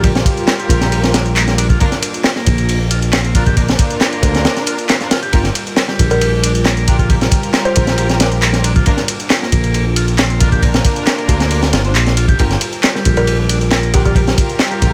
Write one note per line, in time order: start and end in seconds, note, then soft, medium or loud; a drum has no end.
0.00 0.21 A#1 medium
0.00 1.76 G3 medium
0.00 0.09 G3 medium
0.00 5.29 F4 loud
0.00 1.45 F4 loud
0.00 1.45 G4 medium
0.00 1.77 A#4 loud
0.00 1.45 A#4 loud
0.00 kick loud
0.00 closed hi-hat soft
0.00 ride loud
0.15 snare medium
0.15 closed hi-hat soft
0.25 kick medium
0.25 closed hi-hat medium
0.25 ride medium
0.37 closed hi-hat soft
0.47 snare loud
0.47 clap loud
0.47 closed hi-hat soft
0.47 ride medium
0.59 1.02 G3 medium
0.59 closed hi-hat soft
0.69 1.75 A#1 medium
0.69 kick loud
0.69 closed hi-hat medium
0.69 ride medium
0.81 snare medium
0.81 closed hi-hat soft
0.92 closed hi-hat soft
0.92 ride medium
1.04 snare medium
1.04 closed hi-hat soft
1.14 1.23 D4 medium
1.14 snare loud
1.14 closed hi-hat medium
1.14 ride medium
1.26 closed hi-hat soft
1.36 1.57 A#3 medium
1.36 clap loud
1.36 closed hi-hat soft
1.36 ride medium
1.48 1.54 F4 medium
1.48 1.54 G4 medium
1.48 1.54 A#4 loud
1.48 snare soft
1.48 closed hi-hat soft
1.58 1.67 D4 medium
1.58 closed hi-hat medium
1.58 ride medium
1.70 1.79 F4 medium
1.70 kick loud
1.70 closed hi-hat soft
1.80 5.29 A#3 medium
1.80 1.86 A#3 medium
1.80 5.29 D4 medium
1.80 1.87 D4 loud
1.80 1.87 F4 medium
1.80 1.87 A#4 loud
1.80 kick loud
1.80 closed hi-hat soft
1.80 ride medium
1.92 snare soft
1.92 closed hi-hat soft
2.02 closed hi-hat medium
2.02 ride medium
2.14 closed hi-hat soft
2.24 snare loud
2.24 clap loud
2.24 closed hi-hat soft
2.24 ride medium
2.36 2.79 A#3 medium
2.36 snare medium
2.46 3.74 A#1 medium
2.46 kick loud
2.46 closed hi-hat medium
2.46 ride medium
2.58 closed hi-hat soft
2.58 ride soft
2.69 closed hi-hat soft
2.69 ride medium
2.91 3.00 F4 medium
2.91 closed hi-hat medium
2.91 ride medium
3.02 closed hi-hat soft
3.13 3.34 C4 medium
3.13 snare loud
3.13 clap loud
3.13 closed hi-hat soft
3.13 ride loud
3.25 closed hi-hat soft
3.35 3.41 D4 medium
3.35 3.41 F4 medium
3.35 3.44 F4 medium
3.35 3.41 A#4 loud
3.35 kick medium
3.35 closed hi-hat medium
3.35 ride medium
3.46 3.56 G4 medium
3.46 kick loud
3.46 closed hi-hat soft
3.57 3.62 A#3 medium
3.57 4.98 D4 loud
3.57 4.98 F4 medium
3.57 4.98 A#4 loud
3.57 kick loud
3.57 closed hi-hat soft
3.57 ride medium
3.68 snare medium
3.68 closed hi-hat soft
3.79 kick loud
3.79 closed hi-hat medium
3.79 ride medium
3.90 closed hi-hat soft
4.01 snare loud
4.01 clap loud
4.01 closed hi-hat soft
4.01 ride medium
4.12 4.55 A#3 medium
4.12 closed hi-hat soft
4.23 4.45 D2 medium
4.23 kick loud
4.23 closed hi-hat medium
4.23 ride loud
4.23 ride medium
4.35 snare medium
4.35 closed hi-hat soft
4.45 snare loud
4.45 closed hi-hat soft
4.45 ride medium
4.57 snare soft
4.57 closed hi-hat soft
4.66 4.76 F4 medium
4.66 closed hi-hat medium
4.66 ride medium
4.78 closed hi-hat soft
4.78 ride soft
4.89 5.10 C4 medium
4.89 snare loud
4.89 clap loud
4.89 closed hi-hat soft
4.89 ride medium
5.01 5.07 D4 medium
5.01 5.07 F4 medium
5.01 5.07 A#4 medium
5.01 snare soft
5.01 closed hi-hat soft
5.11 5.20 F4 medium
5.11 snare loud
5.11 closed hi-hat medium
5.11 ride medium
5.22 5.32 G4 medium
5.22 closed hi-hat soft
5.33 5.49 G1 loud
5.33 8.82 G3 medium
5.33 5.39 G3 medium
5.33 7.08 F4 medium
5.33 5.40 F4 loud
5.33 5.40 G4 medium
5.33 8.82 A#4 loud
5.33 5.40 A#4 loud
5.33 kick loud
5.33 closed hi-hat soft
5.33 ride loud
5.44 snare soft
5.44 closed hi-hat soft
5.55 closed hi-hat medium
5.55 ride medium
5.67 closed hi-hat soft
5.77 snare loud
5.77 clap loud
5.77 closed hi-hat soft
5.77 ride medium
5.88 6.32 G3 medium
5.88 snare medium
5.99 7.27 A#1 medium
5.99 kick loud
5.99 closed hi-hat medium
5.99 ride medium
6.10 6.21 A#4 medium
6.10 closed hi-hat soft
6.10 ride soft
6.21 closed hi-hat soft
6.21 ride loud
6.43 6.53 D4 medium
6.43 closed hi-hat medium
6.43 ride medium
6.55 closed hi-hat soft
6.65 6.87 A#3 medium
6.65 snare loud
6.65 clap loud
6.65 closed hi-hat soft
6.65 ride loud
6.77 closed hi-hat soft
6.88 6.97 D4 medium
6.88 6.94 F4 loud
6.88 6.94 G4 medium
6.88 6.94 A#4 loud
6.88 kick loud
6.88 closed hi-hat medium
6.88 ride medium
6.99 7.09 F4 medium
6.99 kick loud
6.99 closed hi-hat soft
7.09 7.15 G3 medium
7.09 8.51 F4 loud
7.09 8.84 G4 medium
7.09 8.51 G4 medium
7.09 8.51 A#4 loud
7.09 kick loud
7.09 closed hi-hat soft
7.09 ride medium
7.21 snare medium
7.21 closed hi-hat soft
7.31 kick loud
7.31 closed hi-hat medium
7.31 ride medium
7.43 closed hi-hat soft
7.54 snare loud
7.54 clap loud
7.54 closed hi-hat soft
7.54 ride medium
7.65 8.09 G3 medium
7.65 8.27 C5 medium
7.65 closed hi-hat soft
7.76 8.82 A#1 medium
7.76 kick loud
7.76 closed hi-hat medium
7.76 ride medium
7.87 snare medium
7.87 closed hi-hat soft
7.98 closed hi-hat soft
7.98 ride medium
8.09 snare medium
8.09 closed hi-hat soft
8.20 8.29 D4 medium
8.20 snare loud
8.20 closed hi-hat medium
8.20 ride medium
8.32 closed hi-hat soft
8.42 8.63 A#3 medium
8.42 clap loud
8.42 closed hi-hat soft
8.42 ride loud
8.53 8.60 F4 medium
8.53 8.60 G4 medium
8.53 8.60 A#4 medium
8.53 snare soft
8.53 closed hi-hat soft
8.64 8.73 D4 medium
8.64 closed hi-hat medium
8.64 ride medium
8.76 8.85 F4 medium
8.76 kick loud
8.76 closed hi-hat soft
8.86 12.35 A#3 medium
8.86 8.92 A#3 medium
8.86 12.35 D4 medium
8.86 8.93 D4 loud
8.86 10.61 F4 medium
8.86 8.93 F4 medium
8.86 8.93 A#4 loud
8.86 kick loud
8.86 closed hi-hat soft
8.86 ride medium
8.97 snare soft
8.97 closed hi-hat soft
9.08 closed hi-hat medium
9.08 ride medium
9.20 closed hi-hat soft
9.30 snare loud
9.30 clap loud
9.30 closed hi-hat soft
9.30 ride medium
9.42 9.85 A#3 medium
9.42 snare medium
9.52 10.80 A#1 medium
9.52 kick loud
9.52 closed hi-hat medium
9.52 ride medium
9.64 closed hi-hat soft
9.64 ride soft
9.74 closed hi-hat soft
9.74 ride medium
9.96 10.06 F4 medium
9.96 closed hi-hat medium
9.96 ride medium
10.08 closed hi-hat soft
10.18 10.40 C4 medium
10.18 snare loud
10.18 clap loud
10.18 closed hi-hat soft
10.18 ride medium
10.30 closed hi-hat soft
10.40 10.47 D4 medium
10.40 10.50 F4 medium
10.40 10.47 F4 medium
10.40 10.47 A#4 loud
10.40 kick loud
10.40 closed hi-hat medium
10.40 ride medium
10.52 10.62 G4 medium
10.52 kick medium
10.52 closed hi-hat soft
10.62 10.68 A#3 medium
10.62 11.82 D4 loud
10.62 11.82 F4 medium
10.62 12.37 G4 loud
10.62 11.82 A#4 loud
10.62 kick loud
10.62 closed hi-hat soft
10.62 ride medium
10.74 snare medium
10.74 closed hi-hat soft
10.85 kick loud
10.85 closed hi-hat medium
10.85 ride medium
10.96 closed hi-hat soft
11.07 snare loud
11.07 clap loud
11.07 closed hi-hat soft
11.07 ride medium
11.18 11.61 A#3 medium
11.18 closed hi-hat soft
11.28 11.73 D2 medium
11.28 kick medium
11.28 closed hi-hat medium
11.28 ride medium
11.40 snare medium
11.40 closed hi-hat soft
11.50 closed hi-hat soft
11.50 ride loud
11.63 snare medium
11.63 closed hi-hat soft
11.73 11.95 G1 medium
11.73 11.82 F4 medium
11.73 snare loud
11.73 closed hi-hat medium
11.73 ride medium
11.85 11.90 D4 loud
11.85 11.90 F4 medium
11.85 11.90 C5 loud
11.85 closed hi-hat soft
11.95 12.34 A#1 medium
11.95 12.16 C4 medium
11.95 clap loud
11.95 closed hi-hat soft
11.95 ride medium
12.07 snare soft
12.07 closed hi-hat soft
12.17 12.26 F4 medium
12.17 closed hi-hat medium
12.17 ride medium
12.28 12.38 G4 medium
12.28 kick medium
12.28 closed hi-hat soft
12.39 12.55 G1 loud
12.39 14.93 G3 medium
12.39 12.45 G3 medium
12.39 14.93 F4 medium
12.39 12.46 F4 loud
12.39 12.46 G4 medium
12.39 14.93 A#4 loud
12.39 12.46 A#4 loud
12.39 kick loud
12.39 closed hi-hat soft
12.39 ride loud
12.51 snare soft
12.51 closed hi-hat soft
12.61 closed hi-hat medium
12.61 ride medium
12.73 closed hi-hat soft
12.83 snare loud
12.83 clap loud
12.83 closed hi-hat soft
12.83 ride medium
12.95 13.38 G3 medium
12.95 snare medium
13.05 14.33 A#1 medium
13.05 kick loud
13.05 closed hi-hat medium
13.05 ride medium
13.17 13.27 A#4 medium
13.17 closed hi-hat soft
13.17 ride soft
13.27 closed hi-hat soft
13.27 ride medium
13.49 13.59 D4 medium
13.49 closed hi-hat medium
13.49 ride medium
13.61 closed hi-hat soft
13.71 13.93 A#3 medium
13.71 snare loud
13.71 clap loud
13.71 closed hi-hat soft
13.71 ride medium
13.83 closed hi-hat soft
13.94 14.03 D4 medium
13.94 14.00 F4 medium
13.94 14.00 G4 medium
13.94 14.01 G4 medium
13.94 14.00 A#4 loud
13.94 kick loud
13.94 closed hi-hat medium
13.94 ride medium
14.05 14.15 F4 medium
14.05 14.12 G4 medium
14.05 kick medium
14.05 closed hi-hat soft
14.15 14.21 G3 medium
14.15 14.93 F4 loud
14.15 14.93 G4 medium
14.15 14.93 A#4 loud
14.15 kick loud
14.15 closed hi-hat soft
14.15 ride medium
14.27 snare medium
14.27 closed hi-hat soft
14.38 kick loud
14.38 closed hi-hat medium
14.38 ride medium
14.50 closed hi-hat soft
14.59 snare loud
14.59 clap loud
14.59 closed hi-hat soft
14.59 ride medium
14.71 14.93 G3 medium
14.71 closed hi-hat soft
14.82 14.93 A#1 medium
14.82 kick medium
14.82 closed hi-hat medium
14.82 ride medium